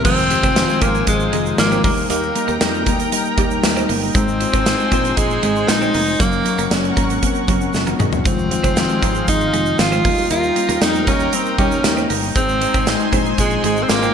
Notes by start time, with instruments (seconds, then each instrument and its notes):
0.04 fretless electric bass F1, fm electric piano D#3 F3 G#3 C4 F4, clean electric guitar F3, alto saxophone C4, analog synth pad D#4 C5 F5 G#5, kick, crash, shaker
0.18 shaker
0.29 fm electric piano D#3 F3 G#3 C4 G4, muted clean electric guitar stroke, closed hi-hat
0.43 fretless electric bass F1, clean electric guitar C4, kick, closed hi-hat, shaker
0.56 fm electric piano D#3 F3 G#3 C4 F4, snare, closed hi-hat, tambourine, shaker
0.69 shaker
0.81 fretless electric bass G#1, fm electric piano D#3 F3 G#3 C4 F4, alto saxophone A#3, clean electric guitar C4, kick, closed hi-hat, shaker
0.95 shaker
1.07 fretless electric bass G#1, fm electric piano D#3 F3 G#3 C4 F4, alto saxophone G#3, kick, closed hi-hat, shaker
1.20 shaker
1.32 fretless electric bass F1, fm electric piano D#3 F3 G#3 C4 F4, clean electric guitar G#3, closed hi-hat
1.46 shaker
1.58 fretless electric bass G#1, fm electric piano D#3 F3 G#3 C4 F4, alto saxophone A#3, muted clean electric guitar stroke, snare, closed hi-hat, tambourine, shaker
1.71 clean electric guitar C4, shaker
1.84 fretless electric bass D#2, fm electric piano G3 A#3 D#4, alto saxophone A#3, clean electric guitar A#3, analog synth pad A#4 G5 A#5, kick, open hi-hat, shaker
1.96 shaker
2.10 fretless electric bass D#2, alto saxophone A#3, clean electric guitar D#4, closed hi-hat, shaker
2.23 shaker
2.35 fm electric piano G3 A#3 D#4, muted clean electric guitar stroke, closed hi-hat
2.48 fretless electric bass D#2, clean electric guitar A#3, shaker
2.61 fretless electric bass F2, fm electric piano G3 A#3 D#4, snare, closed hi-hat, tambourine, shaker
2.74 shaker
2.86 fretless electric bass D#2, fm electric piano G3 A#3 D#4, clean electric guitar A#3, kick, closed hi-hat, shaker
2.99 closed hi-hat, shaker
3.12 fm electric piano G3 A#3 D#4, closed hi-hat, shaker
3.25 shaker
3.37 fretless electric bass D#2, fm electric piano G3 A#3 D#4, clean electric guitar G3, kick, closed hi-hat
3.51 shaker
3.63 fretless electric bass D#2, fm electric piano G3 A#3 D#4 D#5, muted clean electric guitar stroke, snare, closed hi-hat, tambourine, shaker
3.77 clean electric guitar C4, shaker
3.89 fretless electric bass G1, fm electric piano G3 A#3 D#4, clean electric guitar A#3, open hi-hat, shaker
4.02 shaker
4.14 fretless electric bass G#1, fm electric piano G#3 C4 D#4, clean electric guitar G#3, alto saxophone C4, analog synth pad D#4 C5 G#5 C6, kick, closed hi-hat, shaker
4.28 shaker
4.40 fm electric piano G#3 C4 F4, muted clean electric guitar stroke, closed hi-hat
4.53 fretless electric bass G#1, clean electric guitar C4, kick, closed hi-hat, shaker
4.66 fm electric piano G#3 C4 D#4, snare, closed hi-hat, tambourine, shaker
4.79 shaker
4.92 fretless electric bass A#1, fm electric piano G#3 C4 F4, clean electric guitar C4, kick, closed hi-hat, shaker
5.05 closed hi-hat, shaker
5.17 fretless electric bass A#1, fm electric piano G#3 C4 D#4, alto saxophone G#3, kick, closed hi-hat, shaker
5.30 shaker
5.43 fretless electric bass G#1, fm electric piano G#3 C4 D#4, clean electric guitar G#3, closed hi-hat
5.56 shaker
5.68 fretless electric bass A#1, fm electric piano G#3 C4 D#4, alto saxophone D#4, muted clean electric guitar stroke, snare, closed hi-hat, tambourine, shaker
5.82 clean electric guitar C4, shaker
5.94 fretless electric bass F1, fm electric piano G#3 C4 D#4, clean electric guitar A#3, open hi-hat, shaker
6.07 shaker
6.20 fretless electric bass F#1, fm electric piano F#3 A#3 C#4, clean electric guitar F#3, alto saxophone A#3, analog synth pad C#4 A#4 F#5 C#6, kick, closed hi-hat, shaker
6.32 shaker
6.45 fm electric piano F#3 A#3 C#4, muted clean electric guitar stroke, closed hi-hat, shaker
6.58 fretless electric bass F#1, clean electric guitar A#3, closed hi-hat, shaker
6.71 fretless electric bass F#1, fm electric piano F#3 A#3 C#4, snare, closed hi-hat, tambourine, shaker
6.84 shaker
6.96 fretless electric bass G#1, fm electric piano F#3 A#3 C#4, clean electric guitar A#3, kick, closed hi-hat, shaker
7.10 closed hi-hat, shaker
7.22 fm electric piano F#3 A#3 C4, kick, closed hi-hat, shaker
7.35 shaker
7.48 fretless electric bass F#1, clean electric guitar F#3, kick, closed hi-hat, shaker
7.61 fm electric piano A#3 C#4, shaker
7.73 fretless electric bass F#1, fm electric piano C#4 F4, muted clean electric guitar stroke, snare, shaker
7.87 clean electric guitar A#3, fm electric piano D#4 F#4, high tom, shaker
7.99 fretless electric bass E1, clean electric guitar G#3, fm electric piano C4 D#4, mid tom, shaker
8.12 fm electric piano A#3 C#4, floor tom, shaker
8.25 fretless electric bass F1, fm electric piano D#3 F3 G#3 C4 F4, clean electric guitar F3, alto saxophone C4, analog synth pad D#4 G#4 F5 C6, kick, closed hi-hat, shaker
8.38 shaker
8.50 fm electric piano D#3 F3 G#3 C4 F4, muted clean electric guitar stroke, closed hi-hat
8.64 fretless electric bass F1, clean electric guitar C4, kick, closed hi-hat, shaker
8.76 fm electric piano D#3 F3 G#3 C4 F4, snare, closed hi-hat, tambourine, shaker
8.89 shaker
9.02 fretless electric bass G#1, fm electric piano D#3 F3 G#3 C4 F4, clean electric guitar C4, kick, closed hi-hat, shaker
9.15 shaker
9.28 fretless electric bass G#1, fm electric piano D#3 F3 G#3 C4 F4, alto saxophone D#4, kick, closed hi-hat, shaker
9.40 shaker
9.53 fretless electric bass F1, fm electric piano D#3 F3 G#3 C4 F4, clean electric guitar G#3, closed hi-hat
9.66 shaker
9.79 fretless electric bass G#1, fm electric piano D#3 F3 G#3 C4 F4, alto saxophone F4, muted clean electric guitar stroke, snare, closed hi-hat, tambourine, shaker
9.92 clean electric guitar C4, shaker
10.04 fretless electric bass D#2, fm electric piano G3 A#3 D#4, clean electric guitar A#3, analog synth pad D#4 A#4 G5 A#5, kick, open hi-hat, shaker
10.17 shaker
10.30 fretless electric bass D#2, clean electric guitar D#4, alto saxophone F4, closed hi-hat, shaker
10.43 shaker
10.56 fm electric piano G3 A#3 C#4, muted clean electric guitar stroke, closed hi-hat
10.69 fretless electric bass D#2, clean electric guitar A#3, closed hi-hat, shaker
10.81 fretless electric bass F2, fm electric piano G3 A#3 D#4, alto saxophone D#4, snare, closed hi-hat, tambourine, shaker
10.95 shaker
11.07 fretless electric bass D#2, fm electric piano G3 A#3, clean electric guitar A#3, alto saxophone C#4, kick, closed hi-hat, shaker
11.20 shaker
11.33 fm electric piano G3 A#3 D#4, alto saxophone C4, closed hi-hat, shaker
11.45 shaker
11.58 fretless electric bass D#2, clean electric guitar G3, fm electric piano G3 A#3 D#4, alto saxophone C#4, kick, closed hi-hat
11.71 shaker
11.84 fretless electric bass D#2, fm electric piano G3 A#3 D#4, muted clean electric guitar stroke, snare, closed hi-hat, tambourine, shaker
11.97 clean electric guitar C4, shaker
12.09 fretless electric bass G1, fm electric piano G3 A#3 D#4, clean electric guitar A#3, open hi-hat, shaker
12.23 shaker
12.35 fretless electric bass G#1, fm electric piano G#3 C4 D#4, clean electric guitar G#3, alto saxophone C4, analog synth pad C5 G#5 C6, kick, closed hi-hat, shaker
12.49 shaker
12.61 fm electric piano G#3 D#4, muted clean electric guitar stroke, closed hi-hat
12.74 fretless electric bass G#1, clean electric guitar C4, kick, closed hi-hat, shaker
12.86 fm electric piano G#3 C4 D#4, snare, closed hi-hat, tambourine, shaker
13.00 shaker
13.12 fretless electric bass A#1, fm electric piano G#3 C4 D#4, clean electric guitar C4, kick, closed hi-hat, shaker
13.25 shaker
13.38 fretless electric bass A#1, fm electric piano G#3 C4 F4, alto saxophone G#3, kick, closed hi-hat, shaker
13.50 shaker
13.63 fretless electric bass G#1, fm electric piano G#3 C4 D#4, clean electric guitar G#3, alto saxophone G#3, closed hi-hat
13.76 shaker
13.83 alto saxophone C4
13.89 fretless electric bass G#1, fm electric piano G#3 C4 F4, alto saxophone A#3, muted clean electric guitar stroke, snare, closed hi-hat, tambourine, shaker
14.02 clean electric guitar C4, shaker